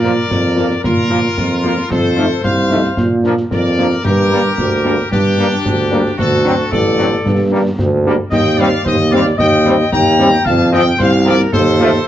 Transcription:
Already playing: A#2 A#4 D5
0.03 F3 A#3 F4, snare
0.31 F2, concert bass drum, snare
0.56 F3 A#3 F4, snare
0.71 snare
0.83 A#2 F4 A#4, concert bass drum, snare
1.10 F3 A#3 F4, snare
1.25 snare
1.38 F2, concert bass drum, snare
1.63 F3 A#3 F4, snare
1.78 snare
1.90 F2 A4 C5, concert bass drum, snare, crash
2.17 F3 A3 D#4, snare
2.44 C2 C5 F5, concert bass drum, snare
2.70 F3 A3 D#4, snare
2.84 snare
2.97 A#2, concert bass drum, snare
3.24 F3 A#3 D4, snare
3.37 snare
3.51 F2 A#4 D5, concert bass drum, snare
3.78 F3 A#3 D4, snare
3.91 snare
4.04 G2 G4 A#4, concert bass drum, snare, crash
4.30 G3 A#3 D4, snare
4.58 D2, concert bass drum, snare
4.84 G3 A#3 D4, snare
4.99 snare
5.11 G2 D4 G4, concert bass drum, snare
5.38 G3 A#3 D4, snare
5.52 snare
5.65 D2, concert bass drum, snare
5.91 G3 A#3 D4, snare
6.06 snare
6.18 D2 F#4 A4, concert bass drum, snare, crash
6.44 F#3 C4 D4, snare
6.71 A1 A4 D5, concert bass drum, snare
6.98 F#3 C4 D4, snare
7.12 snare
7.25 G2, concert bass drum, snare
7.52 G3 A#3 D4
7.78 D2, concert bass drum, snare
8.05 G3 A#3 D4
8.31 D#2 D#5 G5, concert bass drum, snare, crash
8.58 G3 C4 D5 F5, snare
8.84 D#2 C5 D#5, concert bass drum, snare
9.11 G3 C4 D5 F5, snare
9.26 snare
9.37 D#2 D#5 G5, concert bass drum, snare
9.65 G3 C4, snare
9.79 snare
9.92 D#2 G5 A#5, concert bass drum, snare
10.18 G3 C4, snare
10.33 snare
10.45 F2 F5 A5, concert bass drum, snare, crash
10.72 F3 C4 F4 D#5 G5, snare
10.99 C2 C5 F5, concert bass drum, snare
11.25 F3 C4 F4 A#4 D5, snare
11.40 snare
11.52 D#2 A4 C5, concert bass drum, snare
11.79 F3 A3 F4, snare
11.93 snare

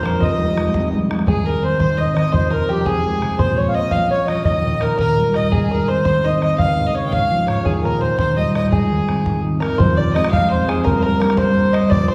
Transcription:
Already playing: A#1 F2 C5
0.02 F3 A#3 D4 A#4 A#5, bodhran
0.20 F1 F2 D#5, bodhran
0.38 F3 G#3 D#4, bodhran
0.55 F3 G#3 D#4, bodhran
0.67 bodhran
0.72 C2, bodhran
0.91 F3 G#3 D#4, bodhran
1.09 F3 G#3 D#4, bodhran
1.19 bodhran
1.26 G#2 G#4 G#5, bodhran
1.37 bodhran
1.43 D#3 A#4
1.62 C4 C5
1.79 D#3 C5 C6, bodhran
1.97 D#4 D#5, bodhran
2.14 D#3 D#5, bodhran
2.32 F2 C5 C6, bodhran
2.43 bodhran
2.50 C3 A#4 A#5
2.68 F3 G4 G5
2.81 A#5
2.85 C3 G#4 G#5, bodhran
3.05 G#3, bodhran
3.22 C3, bodhran
3.30 bodhran
3.38 A#2 C5 C6, bodhran
3.49 bodhran
3.57 F3 C#5
3.68 F5
3.74 A#3 D#5
3.91 F3 F5, bodhran
4.11 C#4 C#5, bodhran
4.26 F3 D#5, bodhran
4.36 bodhran
4.44 D#2 D#5, bodhran
4.55 bodhran
4.63 A#2
4.80 D#3 A#4 A#5, bodhran
4.97 A#2 A#4 A#5, bodhran
5.17 G3, bodhran
5.34 A#2 D#5, bodhran
5.43 bodhran
5.51 G#2 G#4 G#5, bodhran
5.62 bodhran
5.71 D#3 A#4 A#5
5.88 C4 C5 C6
6.04 D#3 C5 C6, bodhran
6.24 D#4 D#5, bodhran
6.41 D#3 D#5, bodhran
6.51 bodhran
6.58 C#2 F5, bodhran
6.69 bodhran
6.78 G#2
6.86 D#5
6.94 C#3 C#5
7.05 G5
7.11 G#2 F5, bodhran
7.30 F3, bodhran
7.47 G#2 C#5, bodhran
7.57 bodhran
7.64 D#2 G#4 G#5, bodhran
7.75 bodhran
7.83 A#2 A#4 A#5
8.00 D#3 C5
8.18 A#2 C5 C6, bodhran
8.36 G3 D#5, bodhran
8.54 A#2 D#5, bodhran
8.64 bodhran
8.71 G#2 G#4 G#5, bodhran
8.90 D#3
9.07 C4, bodhran
9.25 D#3, bodhran
9.44 D#4, bodhran
9.60 D#3 A#4 A#5, bodhran
9.72 bodhran
9.78 F1 F2 C5 C6, bodhran
9.96 D5, bodhran
10.13 F3 G#3 C4 D#5, bodhran
10.24 bodhran
10.31 F3 G#3 C4 F5, bodhran
10.49 C5, bodhran
10.68 G#4 G#5, bodhran
10.78 bodhran
10.84 G1 G2 A#4 A#5, bodhran
10.96 C5
11.02 A#4 A#5, bodhran
11.20 G3 A#3 D4 A#4 A#5, bodhran
11.30 bodhran
11.37 G3 A#3 D4 C5 C6, bodhran
11.57 bodhran
11.73 D#5, bodhran
11.82 bodhran
11.90 F1 F2 D5, bodhran
12.08 C5 C6, bodhran

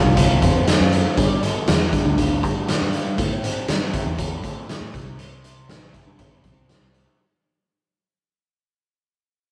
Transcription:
Already playing: F3 A3 C4 F4
0.04 C2
0.17 A3, kick, closed hi-hat
0.42 F2 C4, kick, closed hi-hat
0.67 F4, snare, closed hi-hat
0.80 F#2, snare
0.92 A3, closed hi-hat
1.17 G2 G3, kick, closed hi-hat
1.42 A3, closed hi-hat
1.67 E2 G3, snare, closed hi-hat
1.93 D4, kick, closed hi-hat
2.05 D2
2.18 G3, kick, closed hi-hat
2.43 G2 A3, kick, closed hi-hat
2.68 D4, snare, closed hi-hat
2.81 G2
2.93 G3, closed hi-hat
3.18 A2, kick, closed hi-hat
3.43 C4, closed hi-hat
3.68 G2 A3, snare, closed hi-hat
3.94 E4, kick, closed hi-hat
4.06 E2
4.18 A3, kick, closed hi-hat
4.44 A2 C4, kick, closed hi-hat
4.69 E4, snare, closed hi-hat
4.81 A2
4.94 C2 C3, kick, closed hi-hat
5.19 C3, closed hi-hat
5.43 C4, closed hi-hat
5.68 A1 G3, snare, closed hi-hat
5.93 E4, kick, closed hi-hat
6.07 G2
6.19 G3, kick, closed hi-hat
6.43 C2 C4, kick, closed hi-hat
6.69 E4, snare, closed hi-hat
6.81 C2
6.94 G3, closed hi-hat

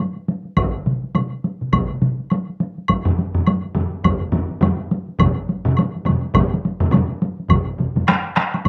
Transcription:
0.16 taiko high
0.28 taiko high
0.45 taiko high
0.57 taiko, taiko high, high woodblock
0.75 taiko high
0.86 taiko mid, taiko high
1.04 taiko high
1.15 taiko mid, taiko high, high woodblock
1.33 taiko high
1.44 taiko high
1.61 taiko mid, taiko high
1.73 taiko, taiko mid, taiko high, high woodblock
1.90 taiko mid
2.02 taiko mid, taiko high
2.20 taiko high
2.30 taiko high, high woodblock
2.49 taiko high
2.60 taiko high
2.78 taiko high
2.88 taiko, taiko high, high woodblock
3.05 taiko low-mid, taiko high
3.19 taiko high
3.35 taiko low-mid, taiko high
3.47 taiko high, high woodblock
3.65 taiko high
3.75 taiko low-mid, taiko high
3.94 taiko high
4.04 taiko, taiko low-mid, taiko high, high woodblock
4.21 taiko low-mid
4.32 taiko low-mid, taiko high
4.51 taiko high
4.61 taiko low-mid, taiko high, high woodblock
4.80 taiko high
4.91 taiko high
5.09 taiko high
5.19 taiko, taiko low-mid, taiko mid, taiko high, high woodblock
5.37 taiko high
5.49 taiko high
5.65 taiko low-mid, taiko mid, taiko high
5.77 taiko high, high woodblock
5.96 taiko high
6.05 taiko low-mid, taiko mid, taiko high, high woodblock
6.25 taiko high
6.34 taiko, taiko low-mid, taiko mid, taiko high, high woodblock
6.54 taiko high
6.65 taiko high
6.80 taiko low-mid, taiko mid, taiko high
6.91 taiko low-mid, taiko mid, taiko high, high woodblock
7.11 taiko high
7.22 taiko high
7.40 taiko high
7.50 taiko, taiko low-mid, taiko mid, taiko high, high woodblock
7.79 taiko low-mid, taiko mid, taiko high
7.96 taiko low-mid, taiko mid, taiko high
8.07 taiko rim, taiko high, high woodblock
8.35 taiko rim, taiko high, high woodblock
8.54 taiko high, high woodblock
8.65 taiko low-mid, taiko mid, taiko high, high woodblock

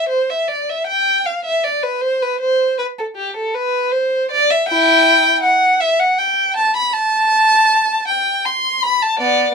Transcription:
Already playing: E5
0.09 C5
0.30 E5
0.48 D5
0.69 E5
0.87 G5
1.26 F5
1.45 E5
1.64 D5
1.83 B4
2.01 C5
2.22 B4
2.40 C5
2.78 B4
2.99 A4
3.16 G4
3.37 A4
3.55 B4
3.92 C5
4.31 D5
4.50 E5
4.69 E4 G5
5.43 F#5
5.80 E5
6.00 F#5
6.19 G5
6.56 A5
6.77 B5
6.94 A5
8.07 G5
8.45 C6
8.83 B5
9.02 A5
9.19 B3 D5

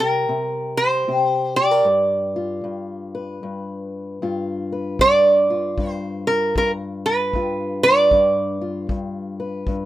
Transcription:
Already playing: C3 G3
0.00 G4 A#4
0.29 C3
0.77 C5
1.08 C3 G4
1.56 G4 D5
1.71 A#4
1.85 G2
2.36 F4
2.64 G2
3.15 B4
3.43 G2
4.22 G2 F4
4.72 B4
4.99 G2 D5, kick
5.50 F4
5.78 G2, kick
5.90 C5
6.27 F4 A#4
6.56 G2 A#4, kick
7.06 B4
7.33 G2 F4, kick
7.83 B4 D5
8.11 G2, kick
8.61 F4
8.89 G2, kick
9.40 B4
9.67 G2, kick

